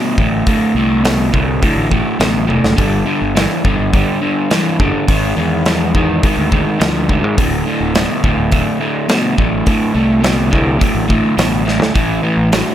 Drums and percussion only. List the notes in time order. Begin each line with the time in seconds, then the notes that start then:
0.18 kick
0.47 kick, open hi-hat
1.05 snare, open hi-hat
1.34 kick
1.63 kick, open hi-hat
1.91 kick
2.20 snare, open hi-hat
2.50 high tom
2.64 snare
2.78 kick, open hi-hat
3.37 snare, open hi-hat
3.65 kick
3.94 kick, open hi-hat
4.51 snare, open hi-hat
4.80 kick
5.08 kick, open hi-hat
5.66 snare, open hi-hat
5.95 kick
6.23 kick, open hi-hat
6.52 kick
6.81 snare, open hi-hat
7.09 kick
7.38 kick, open hi-hat
7.95 snare, open hi-hat
8.24 kick
8.52 kick, open hi-hat
9.09 snare, open hi-hat
9.38 kick
9.66 kick, open hi-hat
10.24 snare, open hi-hat
10.53 kick
10.81 kick, open hi-hat
11.10 kick
11.38 snare, open hi-hat
11.68 snare
11.82 snare
11.95 kick, open hi-hat
12.52 snare, open hi-hat